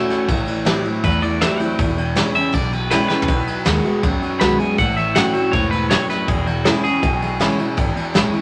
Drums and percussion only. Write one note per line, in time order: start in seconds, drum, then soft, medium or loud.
0.10 snare soft
0.10 ride medium
0.29 kick loud
0.29 ride medium
0.48 ride medium
0.66 snare loud
0.66 ride medium
0.85 ride medium
1.04 kick loud
1.04 ride medium
1.23 ride medium
1.41 snare loud
1.41 ride medium
1.60 ride medium
1.79 kick loud
1.79 ride medium
1.98 ride medium
2.16 snare loud
2.16 ride loud
2.35 ride medium
2.54 kick loud
2.54 ride medium
2.73 ride medium
2.91 snare loud
2.91 ride medium
3.10 snare medium
3.22 floor tom medium
3.28 kick loud
3.28 ride medium
3.47 ride medium
3.66 snare loud
3.66 ride medium
3.85 ride medium
4.03 kick loud
4.03 ride medium
4.22 ride medium
4.41 snare loud
4.41 ride medium
4.60 ride medium
4.78 kick loud
4.78 ride medium
4.97 ride medium
5.16 snare loud
5.16 ride medium
5.34 ride medium
5.53 kick loud
5.53 ride medium
5.72 ride medium
5.91 snare loud
5.91 ride medium
6.10 snare soft
6.10 ride medium
6.28 kick loud
6.28 ride medium
6.47 ride medium
6.65 snare loud
6.65 ride medium
6.84 ride medium
7.03 kick loud
7.03 ride medium
7.22 ride medium
7.41 snare loud
7.41 ride medium
7.59 ride medium
7.78 kick loud
7.78 ride medium
7.97 ride medium
8.15 snare loud
8.15 ride medium
8.34 ride medium